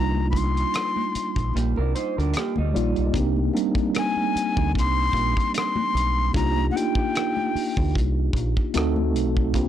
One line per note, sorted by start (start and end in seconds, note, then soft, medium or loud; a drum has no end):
0.00 0.63 C2 medium
0.00 1.19 G3 medium
0.00 1.20 A#3 medium
0.00 1.20 D4 medium
0.00 1.20 D#4 medium
0.00 1.20 F4 medium
0.00 0.30 A#5 medium
0.16 high conga soft
0.30 0.39 B5 medium
0.30 kick medium
0.30 high conga soft
0.36 1.56 C6 medium
0.36 closed hi-hat medium
0.57 closed hi-hat soft
0.74 cross-stick loud
0.74 closed hi-hat medium
0.74 muted conga soft
0.96 muted conga soft
0.96 high conga medium
1.15 muted fingered electric bass stroke soft
1.15 closed hi-hat medium
1.36 1.52 A#1 medium
1.36 kick medium
1.36 closed hi-hat soft
1.36 low conga medium
1.54 1.74 A#1 medium
1.54 1.76 A#3 soft
1.54 1.76 G4 medium
1.54 closed hi-hat medium
1.54 muted conga soft
1.76 1.93 C2 medium
1.76 1.94 D4 medium
1.76 1.94 A#4 medium
1.76 muted conga soft
1.95 2.17 D#4 medium
1.95 2.16 C5 medium
1.95 closed hi-hat medium
2.18 2.33 D2 medium
2.18 2.35 D4 medium
2.18 2.34 A#4 medium
2.18 closed hi-hat soft
2.34 2.57 G4 medium
2.34 cross-stick loud
2.34 closed hi-hat medium
2.34 muted conga soft
2.38 2.57 A#3 medium
2.56 2.72 D2 medium
2.56 3.12 G3 soft
2.56 3.12 D#4 medium
2.56 muted conga soft
2.56 high conga medium
2.56 low conga medium
2.73 2.94 A#1 medium
2.73 3.06 G3 medium
2.73 3.06 A#3 medium
2.73 3.07 D#4 medium
2.73 3.07 F4 medium
2.73 3.07 D5 medium
2.73 closed hi-hat medium
2.96 3.12 B1 medium
2.96 closed hi-hat soft
3.13 3.49 C2 medium
3.13 3.46 A#3 medium
3.13 3.46 C4 medium
3.13 3.46 D4 medium
3.13 3.47 D#4 medium
3.13 3.47 G4 medium
3.13 kick loud
3.13 closed hi-hat medium
3.13 low conga medium
3.36 high conga soft
3.53 4.80 G3 medium
3.53 4.79 A#3 medium
3.53 4.79 C4 medium
3.53 4.80 D4 medium
3.53 4.80 D#4 medium
3.53 closed hi-hat medium
3.53 high conga soft
3.75 kick medium
3.75 closed hi-hat soft
3.95 4.72 G#5 medium
3.95 cross-stick loud
3.95 closed hi-hat medium
3.95 muted conga soft
4.17 high conga medium
4.35 muted fingered electric bass stroke soft
4.35 closed hi-hat medium
4.56 4.72 D2 medium
4.56 kick loud
4.56 low conga medium
4.75 5.10 C2 medium
4.75 5.52 C6 loud
4.75 kick medium
4.75 closed hi-hat medium
4.96 muted conga soft
5.13 5.33 A#1 medium
5.13 kick medium
5.13 closed hi-hat medium
5.37 kick medium
5.37 closed hi-hat soft
5.54 6.32 C6 medium
5.54 cross-stick loud
5.54 closed hi-hat medium
5.54 muted conga soft
5.76 muted conga soft
5.76 high conga medium
5.76 low conga medium
5.95 6.29 B1 medium
5.95 closed hi-hat medium
6.33 6.69 C2 medium
6.33 6.66 A#3 medium
6.33 6.66 D4 medium
6.33 6.67 D#4 medium
6.33 6.67 F4 medium
6.33 6.67 G4 medium
6.33 6.67 A#5 medium
6.33 kick loud
6.33 closed hi-hat medium
6.33 muted conga soft
6.33 low conga medium
6.56 muted conga soft
6.56 high conga medium
6.71 8.00 A#3 medium
6.71 8.00 D4 medium
6.71 8.00 D#4 medium
6.71 6.78 F#5 medium
6.71 high conga medium
6.76 8.00 F4 medium
6.76 8.01 G4 medium
6.76 7.95 G5 medium
6.76 closed hi-hat medium
6.95 kick medium
7.15 cross-stick loud
7.15 closed hi-hat medium
7.37 muted conga soft
7.37 high conga medium
7.55 muted fingered electric bass stroke soft
7.55 open hi-hat soft
7.76 7.92 D2 medium
7.76 kick medium
7.76 low conga medium
7.95 8.30 C2 medium
7.95 kick medium
7.95 closed hi-hat medium
7.95 muted conga soft
8.33 8.53 A#1 medium
8.33 kick medium
8.33 closed hi-hat medium
8.57 kick medium
8.74 9.16 D2 medium
8.74 9.40 A3 loud
8.74 9.40 C4 medium
8.74 9.40 D#4 medium
8.74 9.40 F#4 medium
8.74 9.41 A4 loud
8.74 cross-stick loud
8.74 closed hi-hat medium
8.74 muted conga soft
8.96 muted conga soft
8.96 high conga medium
8.96 low conga medium
9.16 9.55 B1 medium
9.16 closed hi-hat medium
9.37 kick medium
9.53 9.68 C2 medium
9.53 9.68 A#3 medium
9.53 9.68 C4 medium
9.53 9.68 D4 medium
9.53 9.68 F4 medium
9.53 9.68 G4 medium
9.53 kick loud
9.53 closed hi-hat medium
9.53 low conga medium